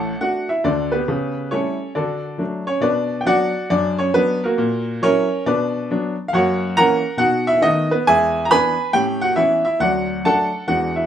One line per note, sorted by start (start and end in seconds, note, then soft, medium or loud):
0.00 0.12 A1 medium
0.00 0.12 A2 medium
0.00 0.19 A4 medium
0.00 0.19 F#5 medium
0.00 0.21 A5 medium
0.21 0.45 A3 soft
0.21 0.45 D4 soft
0.21 0.49 F#4 medium
0.21 0.50 F#5 medium
0.49 0.65 E4 soft
0.49 0.65 E5 medium
0.64 1.00 D2 medium
0.64 1.00 D3 medium
0.64 0.92 D4 soft
0.64 0.94 D5 medium
0.92 1.49 B3 soft
0.92 1.48 G4 soft
0.92 1.52 B4 medium
1.08 1.46 C#3 medium
1.51 1.76 G3 soft
1.51 1.76 A3 soft
1.51 1.93 C#4 medium
1.51 1.76 E4 soft
1.51 1.94 A4 soft
1.51 1.96 C#5 medium
1.95 2.33 D3 medium
1.95 2.37 D4 medium
1.95 2.21 F#4 soft
1.95 2.37 A4 soft
1.95 2.39 D5 medium
2.38 2.63 F#3 soft
2.38 2.63 A3 soft
2.38 2.63 D4 soft
2.67 2.82 C#4 medium
2.67 2.83 C#5 medium
2.81 3.19 B2 medium
2.81 3.19 D4 medium
2.81 3.19 B4 medium
2.81 3.21 D5 medium
3.21 3.26 G5 medium
3.25 3.50 F#3 soft
3.25 3.51 B3 soft
3.25 3.50 D4 soft
3.25 3.68 F#4 medium
3.25 3.68 D5 medium
3.25 3.71 F#5 medium
3.70 4.08 F#2 medium
3.70 3.98 D4 medium
3.70 3.99 D5 medium
3.98 4.14 C#4 medium
3.98 4.14 C#5 medium
4.14 4.38 F#3 medium
4.14 4.41 B3 medium
4.14 4.39 D4 soft
4.14 4.43 B4 loud
4.44 4.99 A#3 medium
4.44 4.99 F#4 medium
4.44 5.02 A#4 medium
4.58 4.95 A#2 medium
5.02 5.26 F#3 medium
5.02 5.43 C#4 medium
5.02 5.27 E4 medium
5.02 5.43 A#4 medium
5.02 5.46 C#5 medium
5.46 5.83 B2 medium
5.46 5.87 D4 medium
5.46 5.87 B4 medium
5.46 5.90 D5 medium
5.91 6.14 F#3 soft
5.91 6.14 B3 soft
5.91 6.15 D4 medium
6.28 6.33 F5 medium
6.33 6.70 F#2 medium
6.33 6.58 A#3 medium
6.33 6.74 F#4 medium
6.33 6.74 C#5 medium
6.33 6.76 F#5 medium
6.77 7.01 E3 medium
6.77 7.01 A#3 medium
6.77 7.02 C#4 medium
6.77 7.18 A#4 medium
6.77 7.17 F#5 medium
6.77 7.20 A#5 loud
7.17 7.55 B2 medium
7.17 7.44 D#4 soft
7.17 7.46 F#4 medium
7.17 7.47 F#5 loud
7.47 7.62 E4 medium
7.47 7.63 E5 medium
7.62 7.86 D#3 medium
7.62 7.86 A3 soft
7.62 7.87 B3 soft
7.62 7.90 D#4 medium
7.62 7.91 D#5 medium
7.91 8.06 B3 medium
7.91 8.07 B4 medium
8.07 8.44 E2 medium
8.07 8.32 G#3 soft
8.07 8.43 G#4 medium
8.07 8.43 E5 medium
8.07 8.46 G#5 loud
8.45 8.50 A#5 medium
8.50 8.74 E3 soft
8.50 8.75 B3 medium
8.50 8.75 D4 soft
8.50 8.92 B4 medium
8.50 8.92 G#5 medium
8.50 8.94 B5 loud
8.93 9.31 A2 medium
8.93 9.19 C#4 soft
8.93 9.21 G4 medium
8.93 9.22 G5 loud
9.21 9.37 F#4 medium
9.21 9.37 F#5 medium
9.36 9.60 E3 soft
9.36 9.61 B3 soft
9.36 9.61 C#4 soft
9.36 9.64 E4 medium
9.36 9.63 E5 medium
9.65 9.80 E4 medium
9.65 9.80 E5 medium
9.80 10.17 D2 medium
9.80 10.05 F#3 medium
9.80 10.22 F#4 medium
9.80 10.22 D5 medium
9.80 10.24 F#5 medium
10.25 10.49 F#3 soft
10.25 10.49 A3 soft
10.25 10.49 D4 medium
10.25 10.66 A4 medium
10.25 10.66 F#5 medium
10.25 10.68 A5 medium
10.67 11.05 E2 medium
10.67 10.91 E3 soft
10.67 10.93 G#3 soft
10.67 10.92 D4 soft
10.67 10.95 F#4 medium
10.67 10.96 F#5 medium
10.96 11.06 E4 soft
10.96 11.06 E5 medium